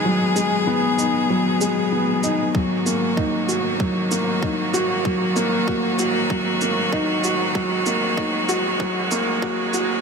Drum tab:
SH |-x-x-x-x|-x-x-x-x|-x-x-x-x|-x-x-x-x|
BD |--------|o-o-o-o-|o-o-o-o-|o-o-o-o-|